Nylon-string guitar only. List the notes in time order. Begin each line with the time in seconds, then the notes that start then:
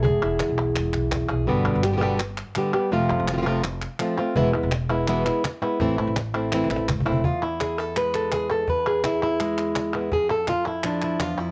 0.03 E2 G#4
0.23 E4
1.30 G#4
1.47 B2 D3 G3 B3 G4
1.83 G3 B3 G4
1.92 D3 G3 B3 G4
1.97 D3 G3 B3 G4
2.01 B2 D3 G3 B3 G4
2.20 muted nylon-string guitar stroke
2.56 D3 G3 B3 G4
2.74 G3 B3 G4
2.92 C3 F3 A3 C4 F4
3.28 A3 C4 F4
3.33 F3 A3 C4 F4
3.37 F3 A3 C4 F4
3.41 F3 A3 C4 F4
3.46 C3 F3 A3 C4 F4
3.64 muted nylon-string guitar stroke
3.99 F3 A3 C4 F4
4.18 A3 C4 F4
4.35 B2 E3 G#3 B3 E4
4.53 G#3 B3 E4
4.72 muted nylon-string guitar stroke
4.90 G#3 B3 E4
5.08 B2 E3 G#3 B3 E4
5.26 G#3 B3 E4
5.44 muted nylon-string guitar stroke
5.62 G#3 B3 E4
5.80 E3 A3 C4 E4
5.98 A3 C4 E4
6.16 muted nylon-string guitar stroke
6.34 A3 C4 E4
6.52 E3 A3 C4 E4
6.70 A3 C4 E4
6.88 muted nylon-string guitar stroke
7.05 A3 C4 E4
7.24 E2 F4
7.43 E4
7.60 G#4
7.78 A4
7.96 G#3 B4
8.15 A4
8.33 G#4
8.51 A4
8.68 E2 B4
8.87 G#4
9.05 E4
9.23 E4
9.40 G#3
9.95 B3 E4
10.12 F2 G#4
10.31 A4
10.49 F4
10.67 E4
10.84 F3 D4
11.04 E4
11.20 E2 F4
11.38 F2 E4